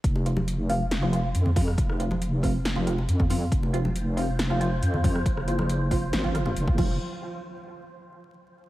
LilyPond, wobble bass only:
\new Staff \with { instrumentName = "Wobble bass" } { \clef bass \time 4/4 \key f \phrygian \tempo 4 = 138 f,,2. f,4 | f,,2. f,4 | f,,2. f,4 | ges,,2 aes,,4 f,,8 f,,8 |
r1 | }